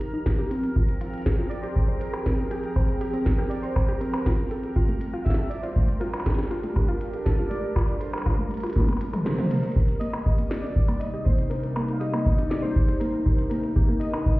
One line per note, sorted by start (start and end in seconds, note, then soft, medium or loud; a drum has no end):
0.00 4.26 F3 medium
0.00 6.00 C4 medium
0.00 9.52 A#4 medium
0.00 6.12 G5 medium
0.00 9.52 A#5 medium
0.00 closed hi-hat medium
0.14 0.25 D#4 medium
0.26 kick loud
0.26 snare loud
0.39 0.46 G4 loud
0.39 closed hi-hat soft
0.49 0.63 C4 medium
0.49 4.26 G#4 medium
0.49 closed hi-hat medium
0.64 closed hi-hat soft
0.76 0.84 F4 medium
0.76 kick loud
0.89 closed hi-hat soft
1.01 1.09 F4 medium
1.01 closed hi-hat medium
1.14 closed hi-hat soft
1.18 closed hi-hat soft
1.22 closed hi-hat soft
1.26 1.34 G#4 medium
1.26 kick loud
1.26 snare loud
1.39 1.43 F4 loud
1.50 1.63 D5 loud
1.50 closed hi-hat medium
1.62 1.71 G4 loud
1.62 1.98 C5 loud
1.62 closed hi-hat soft
1.76 kick loud
1.89 1.93 C5 medium
2.00 2.52 A#4 loud
2.00 closed hi-hat medium
2.14 2.21 G4 loud
2.14 closed hi-hat medium
2.14 percussion blips medium
2.26 2.38 C4 medium
2.26 kick loud
2.26 snare loud
2.50 2.59 G4 loud
2.50 2.97 G#4 medium
2.50 closed hi-hat medium
2.64 closed hi-hat soft
2.76 2.81 C5 medium
2.76 kick loud
2.76 percussion blips soft
2.89 closed hi-hat soft
3.01 3.09 G4 loud
3.01 closed hi-hat medium
3.14 3.25 C4 medium
3.14 closed hi-hat soft
3.25 3.51 A#4 medium
3.25 kick loud
3.25 snare loud
3.39 3.46 G4 loud
3.50 3.62 D5 loud
3.50 closed hi-hat medium
3.62 3.98 C5 loud
3.62 3.68 C5 medium
3.62 closed hi-hat soft
3.76 kick loud
3.76 percussion blips medium
3.89 3.96 G4 loud
3.89 closed hi-hat soft
4.00 4.13 C4 medium
4.00 4.47 A#4 medium
4.00 closed hi-hat medium
4.14 closed hi-hat soft
4.14 percussion blips medium
4.26 14.40 G3 medium
4.26 4.34 F4 loud
4.26 kick loud
4.26 snare loud
4.50 4.97 G4 medium
4.50 4.56 A4 medium
4.50 closed hi-hat medium
4.64 closed hi-hat soft
4.76 4.84 F4 loud
4.76 kick loud
4.88 5.00 A3 medium
4.88 closed hi-hat soft
5.00 9.51 D4 medium
5.00 closed hi-hat medium
5.13 5.21 F4 loud
5.25 5.49 E5 loud
5.25 kick medium
5.25 snare medium
5.30 10.54 A#4 medium
5.30 snare medium
5.34 snare medium
5.39 5.43 A4 medium
5.50 5.63 D5 loud
5.50 closed hi-hat medium
5.57 9.51 G4 medium
5.62 5.71 F4 loud
5.62 6.01 C5 loud
5.62 closed hi-hat soft
5.76 5.88 A3 medium
5.76 kick loud
5.89 closed hi-hat soft
6.00 6.09 F4 loud
6.00 6.26 A#4 loud
6.00 closed hi-hat medium
6.14 closed hi-hat medium
6.14 percussion blips medium
6.20 percussion blips medium
6.25 7.28 G4 medium
6.25 6.31 A4 medium
6.25 kick loud
6.25 snare loud
6.25 percussion blips medium
6.30 snare medium
6.30 percussion blips soft
6.34 snare medium
6.39 snare medium
6.43 snare soft
6.47 snare soft
6.51 6.59 F4 loud
6.51 closed hi-hat medium
6.64 6.75 A3 medium
6.64 closed hi-hat soft
6.76 kick loud
6.76 percussion blips soft
6.89 6.96 F4 loud
6.89 closed hi-hat soft
7.01 closed hi-hat medium
7.14 7.18 A4 medium
7.14 closed hi-hat soft
7.25 7.51 A4 medium
7.25 kick loud
7.25 snare loud
7.38 7.46 F4 loud
7.50 7.63 A3 medium
7.50 7.97 D5 loud
7.50 closed hi-hat medium
7.76 7.84 F4 loud
7.76 kick loud
7.76 percussion blips medium
7.79 percussion blips medium
7.81 percussion blips soft
7.83 percussion blips soft
7.86 closed hi-hat soft
7.86 percussion blips soft
8.00 8.06 A4 medium
8.00 8.11 C5 medium
8.00 closed hi-hat medium
8.13 percussion blips medium
8.18 percussion blips medium
8.22 8.96 A#4 medium
8.22 percussion blips soft
8.26 8.34 F4 loud
8.26 kick medium
8.26 percussion blips soft
8.30 percussion blips soft
8.34 percussion blips soft
8.39 8.50 A3 medium
8.51 closed hi-hat soft
8.54 closed hi-hat soft
8.57 closed hi-hat soft
8.60 closed hi-hat medium
8.63 8.71 F4 loud
8.63 closed hi-hat medium
8.63 percussion blips soft
8.67 closed hi-hat medium
8.70 closed hi-hat medium
8.73 8.84 A#3 loud
8.73 kick loud
8.73 closed hi-hat medium
8.73 high tom medium
8.73 percussion blips soft
8.80 percussion blips soft
8.84 percussion blips soft
8.88 8.93 A3 medium
8.88 closed hi-hat soft
8.88 percussion blips soft
8.93 percussion blips soft
8.97 percussion blips soft
9.01 closed hi-hat medium
9.13 9.25 A3 loud
9.13 closed hi-hat medium
9.13 mid tom medium
9.13 percussion blips soft
9.25 9.34 A4 medium
9.25 9.48 C5 medium
9.25 snare loud
9.38 9.43 A#3 loud
9.38 closed hi-hat soft
9.38 mid tom medium
9.50 14.40 C3 medium
9.50 9.59 A#3 medium
9.50 10.02 A#4 medium
9.50 closed hi-hat medium
9.50 crash medium
9.63 closed hi-hat soft
9.72 closed hi-hat soft
9.76 9.88 D4 medium
9.76 kick loud
9.80 closed hi-hat soft
9.88 closed hi-hat soft
10.00 10.09 A#3 medium
10.00 10.52 D#5 loud
10.00 closed hi-hat medium
10.13 percussion blips medium
10.26 10.34 G4 medium
10.26 kick loud
10.36 10.46 A#3 medium
10.36 14.40 D#4 medium
10.36 closed hi-hat medium
10.50 10.61 D5 medium
10.50 snare loud
10.50 closed hi-hat medium
10.54 closed hi-hat medium
10.57 closed hi-hat medium
10.60 11.01 D5 loud
10.60 closed hi-hat soft
10.63 10.75 D4 medium
10.63 closed hi-hat soft
10.67 closed hi-hat soft
10.70 closed hi-hat soft
10.73 kick loud
10.73 closed hi-hat soft
10.88 10.96 A#3 medium
10.88 closed hi-hat medium
10.88 percussion blips soft
11.00 11.26 D#5 loud
11.00 closed hi-hat medium
11.14 11.21 G4 medium
11.25 11.34 A#3 medium
11.25 11.36 C5 medium
11.25 kick loud
11.38 closed hi-hat soft
11.50 11.63 D4 medium
11.50 11.95 A#4 medium
11.50 closed hi-hat medium
11.64 closed hi-hat soft
11.76 11.84 A#3 medium
11.76 percussion blips medium
11.89 12.00 F5 medium
11.89 closed hi-hat soft
11.99 12.09 G4 medium
11.99 12.47 D#5 loud
11.99 closed hi-hat medium
12.14 12.21 A#3 medium
12.14 percussion blips medium
12.26 kick loud
12.39 12.50 D4 medium
12.39 closed hi-hat medium
12.49 12.62 D5 loud
12.49 snare loud
12.49 closed hi-hat medium
12.62 12.71 A#3 medium
12.62 13.01 C5 loud
12.76 kick loud
12.89 12.96 G4 medium
12.89 closed hi-hat medium
13.00 13.09 A#3 medium
13.00 13.26 A#4 medium
13.00 closed hi-hat medium
13.24 13.38 D4 medium
13.24 13.51 C5 medium
13.24 kick loud
13.39 closed hi-hat soft
13.50 13.59 A#3 medium
13.50 14.02 A#4 loud
13.50 closed hi-hat medium
13.64 closed hi-hat soft
13.76 13.84 G4 medium
13.76 kick loud
13.89 13.96 A#3 medium
14.00 14.40 D#5 loud
14.00 closed hi-hat medium
14.14 14.25 D4 medium
14.14 percussion blips medium
14.26 kick loud